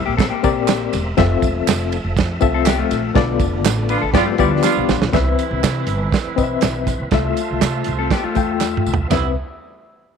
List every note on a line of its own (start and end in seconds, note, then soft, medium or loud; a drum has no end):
0.00 1.16 A#3 medium
0.00 1.16 C4 medium
0.00 0.14 E5 loud
0.00 3.11 E5 medium
0.06 0.26 A#1 medium
0.06 0.18 A#3 medium
0.06 0.17 G4 medium
0.17 0.30 C4 medium
0.17 0.30 A4 medium
0.17 kick loud
0.17 snare loud
0.17 ride medium
0.17 tambourine medium
0.30 1.02 A#3 medium
0.30 1.01 G4 medium
0.43 0.57 C2 loud
0.43 1.02 C4 medium
0.43 1.03 G4 medium
0.43 1.03 A#4 medium
0.43 1.03 D5 loud
0.43 kick medium
0.43 ride medium
0.43 tambourine medium
0.57 0.86 A#1 loud
0.67 snare loud
0.67 clap medium
0.67 ride medium
0.67 tambourine medium
0.93 1.13 E1 loud
0.93 snare soft
0.93 ride medium
0.93 tambourine medium
1.17 1.37 F1 loud
1.17 3.14 F3 medium
1.17 4.11 A3 medium
1.17 1.96 C4 loud
1.17 1.96 F4 medium
1.17 1.96 A4 medium
1.17 1.97 E5 loud
1.17 kick loud
1.17 snare loud
1.17 ride medium
1.17 tambourine soft
1.42 1.62 E1 loud
1.42 kick loud
1.42 ride medium
1.42 tambourine medium
1.67 1.96 F1 loud
1.67 snare loud
1.67 clap loud
1.67 ride medium
1.67 tambourine loud
1.92 ride medium
1.92 tambourine soft
2.04 2.14 F1 medium
2.17 2.36 F2 loud
2.17 kick loud
2.17 snare loud
2.17 ride medium
2.17 tambourine medium
2.41 2.81 C2 loud
2.41 3.00 C4 medium
2.41 3.00 F4 medium
2.41 3.00 A4 medium
2.41 3.01 E5 loud
2.41 kick medium
2.41 ride medium
2.41 tambourine medium
2.54 2.66 C4 medium
2.54 2.66 A4 medium
2.66 2.78 B3 medium
2.66 2.78 G4 medium
2.66 snare loud
2.66 clap medium
2.66 ride medium
2.66 tambourine medium
2.78 3.14 A3 medium
2.78 3.14 F4 medium
2.91 3.10 A#1 loud
2.91 snare soft
2.91 ride medium
2.91 tambourine medium
3.15 3.35 B1 loud
3.15 4.13 D3 medium
3.15 3.94 B3 medium
3.15 5.11 B3 medium
3.15 3.94 F4 medium
3.15 3.94 A4 medium
3.15 3.94 D5 loud
3.15 kick loud
3.15 snare loud
3.15 ride medium
3.40 3.65 F1 medium
3.40 kick loud
3.40 ride medium
3.40 tambourine medium
3.65 3.94 A1 loud
3.65 snare loud
3.65 clap loud
3.65 ride medium
3.65 tambourine loud
3.89 4.01 B3 medium
3.89 4.01 D4 medium
3.89 4.02 D4 medium
3.89 4.01 F4 loud
3.89 4.01 B4 medium
3.89 ride medium
3.89 tambourine soft
4.01 4.15 A1 medium
4.01 4.13 A4 medium
4.12 4.33 G2 loud
4.12 5.11 F3 medium
4.12 5.11 G3 medium
4.12 4.34 B3 medium
4.12 4.26 B3 medium
4.12 4.23 B3 loud
4.12 4.23 D4 loud
4.12 4.34 F4 medium
4.12 4.23 F4 loud
4.12 4.26 G4 medium
4.12 4.34 G4 medium
4.12 4.34 D5 loud
4.12 kick loud
4.12 snare loud
4.12 ride medium
4.12 tambourine medium
4.26 4.38 A3 medium
4.26 4.38 F4 medium
4.38 4.59 D2 medium
4.38 4.51 G3 medium
4.38 4.98 B3 medium
4.38 4.50 B3 medium
4.38 4.50 D4 medium
4.38 4.51 E4 medium
4.38 4.98 F4 medium
4.38 4.50 F4 medium
4.38 4.98 G4 medium
4.38 4.98 D5 loud
4.38 kick medium
4.38 ride medium
4.38 tambourine medium
4.51 5.10 F3 medium
4.51 5.10 D4 medium
4.63 4.99 B3 loud
4.63 4.99 D4 loud
4.63 4.99 F4 loud
4.63 snare medium
4.63 clap medium
4.63 tambourine medium
4.77 4.86 B1 medium
4.88 4.98 A#1 medium
4.88 snare loud
4.88 tambourine medium
5.02 5.11 B1 medium
5.02 snare loud
5.13 5.33 C2 loud
5.13 7.10 E3 medium
5.13 6.84 E3 medium
5.13 5.92 C4 medium
5.13 7.10 C4 medium
5.13 6.84 C4 medium
5.13 6.84 E4 medium
5.13 5.92 B4 medium
5.13 7.10 B4 medium
5.13 5.92 E5 loud
5.13 kick loud
5.13 snare loud
5.13 closed hi-hat medium
5.13 tambourine soft
5.39 closed hi-hat medium
5.39 tambourine medium
5.51 5.61 C2 medium
5.63 5.83 C3 loud
5.63 snare loud
5.63 clap loud
5.63 closed hi-hat loud
5.63 tambourine loud
5.87 6.07 G1 loud
5.87 closed hi-hat medium
5.87 tambourine soft
6.12 kick loud
6.12 snare loud
6.12 closed hi-hat medium
6.12 tambourine medium
6.26 muted upright bass stroke soft
6.36 6.57 B1 medium
6.36 6.96 C4 medium
6.36 6.97 B4 medium
6.36 6.44 D#5 medium
6.36 kick medium
6.36 closed hi-hat medium
6.36 tambourine medium
6.44 7.00 E5 loud
6.61 6.91 B1 loud
6.61 snare loud
6.61 clap medium
6.61 closed hi-hat medium
6.61 tambourine medium
6.87 kick medium
6.87 snare soft
6.87 closed hi-hat medium
6.87 tambourine medium
7.00 7.09 C2 medium
7.10 7.31 C2 loud
7.10 9.08 A3 medium
7.10 7.91 A3 medium
7.10 8.83 A3 medium
7.10 8.83 C4 medium
7.10 9.08 F4 medium
7.10 7.91 F4 medium
7.10 8.83 F4 medium
7.10 9.08 E5 medium
7.10 7.92 E5 loud
7.10 kick loud
7.10 snare loud
7.10 closed hi-hat medium
7.10 tambourine soft
7.37 closed hi-hat medium
7.37 tambourine medium
7.51 7.60 C2 medium
7.61 7.81 C3 loud
7.61 snare loud
7.61 clap loud
7.61 closed hi-hat loud
7.61 tambourine loud
7.84 8.06 C2 loud
7.84 closed hi-hat medium
7.84 tambourine soft
7.99 8.11 C4 medium
7.99 8.10 A4 medium
8.11 8.23 B3 medium
8.11 8.23 G4 medium
8.11 kick loud
8.11 snare loud
8.11 closed hi-hat medium
8.11 tambourine medium
8.24 8.95 A3 medium
8.24 8.95 F4 medium
8.24 muted upright bass stroke soft
8.35 8.75 E2 medium
8.35 8.95 A3 medium
8.35 8.95 F4 medium
8.35 8.96 G5 medium
8.35 kick medium
8.35 closed hi-hat medium
8.35 tambourine soft
8.61 snare medium
8.61 clap medium
8.61 tambourine medium
8.77 mid tom medium
8.86 9.06 C2 loud
8.86 tambourine medium
8.94 floor tom loud
9.08 9.33 C2 loud
9.08 9.27 C3 medium
9.08 9.32 B3 medium
9.08 9.28 B3 medium
9.08 9.32 C4 medium
9.08 9.34 C4 medium
9.08 9.33 E4 medium
9.08 9.28 E4 medium
9.08 9.34 B4 medium
9.08 9.34 E5 medium
9.08 snare medium
9.08 floor tom medium
9.08 ride bell medium
9.08 tambourine medium